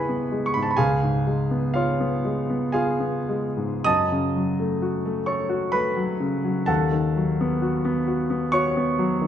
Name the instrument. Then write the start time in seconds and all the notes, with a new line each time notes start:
grand piano
Already playing: C#2 G#2 G#3 B3 E4 G#4 B4 C#5 G#5 B5 C#6
0.09 B3
0.32 G#3
0.46 C#6
0.54 G#2 B5
0.63 A5
0.71 B5
0.77 C#2 G#4 F5 G#5
1.03 G#2
1.27 G#3
1.51 B3
1.74 F4 C#5 F5
2.00 B3
2.25 G#3
2.50 B3
2.72 F4 G#4 F5 G#5
3.00 B3
3.29 G#3
3.57 G#2
3.84 F#2 D#5 A5 D#6
4.12 C#3
4.36 F#3
4.60 A3
4.82 F#4
5.06 A3
5.26 A4 C#5 C#6
5.49 F#4
5.72 A3 B4 B5
5.96 F#3
6.20 C#3
6.44 F#3
6.66 D#2 A4 F#5 A5
6.92 D#3
7.16 F#3
7.41 B3
7.62 F#4
7.85 B3
8.07 F#4
8.30 B3
8.52 F#4 C#5 C#6
8.77 B3
8.99 F#3
9.21 D#3